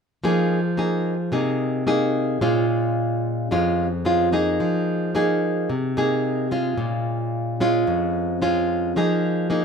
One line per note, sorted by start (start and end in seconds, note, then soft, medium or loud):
0.24 1.30 F3 medium
0.24 0.59 A#3 soft
0.24 0.60 D#4 medium
0.24 0.60 G#4 medium
0.77 1.13 A#3 soft
0.77 1.14 D#4 soft
0.77 1.14 G#4 medium
1.32 2.39 C3 medium
1.32 1.83 A#3 soft
1.32 1.83 D#4 soft
1.32 1.83 G#4 medium
1.87 2.37 A#3 medium
1.87 2.38 D#4 soft
1.87 2.38 G#4 medium
2.41 3.48 A#2 medium
2.41 3.47 G#3 medium
2.41 3.47 C#4 medium
2.41 3.47 F4 medium
3.51 4.58 F2 medium
3.51 3.86 G#3 soft
3.51 3.87 C#4 soft
3.51 3.87 F4 medium
4.05 4.28 G#3 medium
4.05 4.28 C#4 soft
4.05 4.29 F4 medium
4.32 5.10 A#3 medium
4.32 5.10 D#4 medium
4.32 5.11 G#4 medium
4.60 5.67 F3 medium
5.15 5.69 A#3 medium
5.15 5.69 D#4 soft
5.15 5.69 G#4 medium
5.70 6.76 C3 medium
5.97 6.47 A#3 medium
5.97 6.47 D#4 medium
5.97 6.48 G#4 medium
6.51 7.56 G#3 medium
6.51 7.56 C#4 medium
6.51 7.56 F4 medium
6.78 7.84 A#2 medium
7.60 8.38 G#3 medium
7.60 8.38 C#4 medium
7.60 8.38 F4 medium
7.87 8.93 F2 medium
8.42 8.92 G#3 soft
8.42 8.92 C#4 medium
8.42 8.92 F4 medium
8.96 9.65 F3 medium
8.96 9.46 A#3 medium
8.96 9.47 D#4 soft
8.96 9.47 G#4 medium
9.50 9.65 A#3 soft
9.50 9.65 D#4 soft
9.50 9.65 G#4 medium